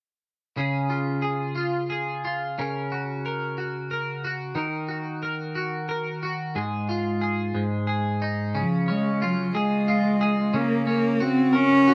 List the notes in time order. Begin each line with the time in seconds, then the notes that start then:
0.57 C#3 G#4
0.90 F4
1.22 G#4
1.55 F4
1.90 G#4
2.25 F4
2.59 C#3 A#4
2.92 F#4
3.26 A#4
3.58 F#4
3.91 A#4
4.25 F#4
4.55 D#3 A#4
4.89 F#4
5.23 A#4
5.55 F#4
5.89 A#4
6.23 F#4
6.55 G#2 G#4
6.89 F4
7.21 G#4
7.54 G#2
7.87 G#4
8.22 D#4
8.55 C#3 F3
8.88 G#3 C#4
9.22 F#3 F4
9.55 G#3 G#4
9.88 F4
10.21 G#4
10.54 C#3 A#3
10.87 A#3 C#4
11.20 C4 F#4
11.53 C#4 A#4
11.88 F#4